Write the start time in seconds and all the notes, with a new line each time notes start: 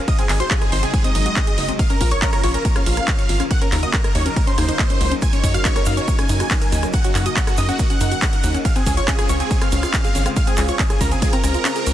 0.08 C3 F#3 G#3 D#4 D#5 D#6, kick, closed hi-hat, ride
0.19 C4 G#4 G#5, closed hi-hat
0.29 G#1 D#4 G#4 G#5, clap, open hi-hat
0.40 F#4 C5 C6, closed hi-hat
0.51 G#4 G#5, kick, clap, closed hi-hat, ride
0.61 G#4 G#5, cross-stick, closed hi-hat
0.72 G#1 D#4 C5 C6, open hi-hat
0.83 C4 G#4 G#5, closed hi-hat
0.94 G#3 G#4 G#5, kick, closed hi-hat, ride
1.04 C4 D#5 D#6, closed hi-hat
1.15 G#1 D#4, open hi-hat
1.26 F#4, closed hi-hat
1.36 G#4, kick, clap, closed hi-hat, ride
1.47 G#4, closed hi-hat
1.58 F#1 D#4, open hi-hat
1.69 C4, closed hi-hat
1.79 C#3 F3 A#3 F4 F5 F6, kick, closed hi-hat, ride
1.90 C#4 A#4 A#5, closed hi-hat
2.01 A#1 F4 A#4 A#5, kick, open hi-hat
2.11 A#4 C#5 C#6, closed hi-hat
2.22 A#4 C#5 A#5, kick, clap, closed hi-hat, ride
2.33 A#4 C#5 A#5, cross-stick, closed hi-hat
2.44 A#1 F4 C#5 C#6, open hi-hat
2.54 C#4 A#4 A#5, closed hi-hat
2.65 A#3 A#4 A#5, kick, closed hi-hat, ride
2.76 C#4 F5 F6, cross-stick, closed hi-hat
2.86 A#1 F4, open hi-hat
2.97 A#4, cross-stick, closed hi-hat
3.08 C#5, kick, clap, closed hi-hat, ride
3.19 C#5, closed hi-hat
3.29 G#1 F4, open hi-hat
3.40 C#4, cross-stick, closed hi-hat
3.51 F#3 A#3 D#4 F#5 F#6, kick, closed hi-hat, ride
3.61 C#4 A#4 A#5, closed hi-hat
3.72 D#2 D#4 A#4 A#5, clap, open hi-hat
3.83 F#4 D#5 D#6, closed hi-hat
3.94 A#4 A#5, kick, clap, closed hi-hat, ride
4.04 A#4 A#5, cross-stick, closed hi-hat
4.15 D#2 D#4 C#5 C#6, open hi-hat
4.26 C#4 A#4 A#5, closed hi-hat
4.36 A#3 A#4 A#5, kick, closed hi-hat, ride
4.47 C#4 C5 C6, closed hi-hat
4.58 D#2 D#4, cross-stick, open hi-hat
4.69 D#4, closed hi-hat
4.79 A#3, kick, clap, closed hi-hat, ride
4.90 C#4, closed hi-hat
5.01 C#2 A#3, open hi-hat
5.11 C#4, closed hi-hat
5.22 A#3 G#5 G#6, kick, closed hi-hat, ride, shaker
5.33 C#4 C#5 C#6, closed hi-hat, shaker
5.43 F#2 D#4 C#5 C#6, kick, open hi-hat, shaker
5.54 F#4 F5 F6, closed hi-hat, shaker
5.65 D#4 C#5 C#6, kick, clap, closed hi-hat, ride, shaker
5.76 A#4 C#5 C#6, cross-stick, closed hi-hat, shaker
5.86 F#2 D#4 F5 F6, open hi-hat, shaker
5.97 C#4 C#5 C#6, closed hi-hat, shaker
6.08 A#3 C#5 C#6, kick, closed hi-hat, ride, shaker
6.18 C#4 G#5 G#6, cross-stick, closed hi-hat, shaker
6.29 F#2 D#4, open hi-hat, shaker
6.40 F#4, cross-stick, closed hi-hat, shaker
6.50 D#4, kick, clap, closed hi-hat, ride, shaker
6.61 A#4, closed hi-hat, shaker
6.72 D#2 D#4, open hi-hat, shaker
6.83 C#4, cross-stick, closed hi-hat, shaker
6.93 A#3 F#5 F#6, kick, closed hi-hat, ride, shaker
7.04 C#4 F#4 F#5, closed hi-hat, shaker
7.15 F#2 D#4 F#4 F#5, clap, open hi-hat, shaker
7.26 F#4 D#5 D#6, closed hi-hat, shaker
7.36 D#4 F#4 F#5, kick, clap, closed hi-hat, ride, shaker
7.47 F#4 A#4 F#5, cross-stick, closed hi-hat, shaker
7.57 F#2 D#4 D#5 D#6, open hi-hat, shaker
7.69 C#4 F#4 F#5, closed hi-hat, shaker
7.79 A#3 F#4 F#5, kick, closed hi-hat, ride, shaker
7.90 C#4 F#5 F#6, closed hi-hat, shaker
8.01 F#2 D#4, open hi-hat, shaker
8.11 F#4, closed hi-hat, shaker
8.22 D#4, kick, clap, closed hi-hat, ride, shaker
8.32 A#4, closed hi-hat, shaker
8.44 D#2 D#4, open hi-hat, shaker
8.54 C#4, closed hi-hat, shaker
8.65 G#3 C4 F4 F5 F6, kick, closed hi-hat, ride, shaker
8.76 C4 G#4 G#5, closed hi-hat, shaker
8.86 C#2 C#4 G#4 G#5, kick, open hi-hat, shaker
8.97 F4 C#5 C#6, closed hi-hat, shaker
9.08 C#4 G#4 G#5, kick, clap, closed hi-hat, ride, shaker
9.18 G#4 G#5, cross-stick, closed hi-hat, shaker
9.29 C#2 C#4 C#5 C#6, open hi-hat, shaker
9.40 C4 G#4 G#5, closed hi-hat, shaker
9.50 G#3 G#4 G#5, kick, closed hi-hat, ride, shaker
9.61 C4 F5 F6, cross-stick, closed hi-hat, shaker
9.72 C#2 C#4, open hi-hat, shaker
9.83 F4, cross-stick, closed hi-hat, shaker
9.94 C#4, kick, clap, closed hi-hat, ride, shaker
10.04 G#4, closed hi-hat, shaker
10.15 G#1 C#4, open hi-hat, shaker
10.26 C4, cross-stick, closed hi-hat, shaker
10.36 G#3 F5 F6, kick, closed hi-hat, ride, shaker
10.47 C4 G#4 G#5, closed hi-hat, shaker
10.57 C#2 C#4 G#4 G#5, clap, open hi-hat, shaker
10.68 F4 C#5 C#6, closed hi-hat, shaker
10.79 C#4 G#4 G#5, kick, clap, closed hi-hat, ride, shaker
10.90 G#4 G#5, cross-stick, closed hi-hat, shaker
11.01 C#2 C#4 A#4 A#5, kick, open hi-hat, shaker
11.11 C4 G#4 G#5, closed hi-hat, shaker
11.22 G#3 G#4 G#5, kick, closed hi-hat, ride, shaker
11.33 C4 A#4 A#5, closed hi-hat, shaker
11.44 C#2 C#4, cross-stick, open hi-hat, shaker
11.54 F4, closed hi-hat, shaker
11.65 C#4, clap, closed hi-hat, ride, shaker
11.76 G#4, closed hi-hat, shaker
11.86 C#2 C#4, open hi-hat, shaker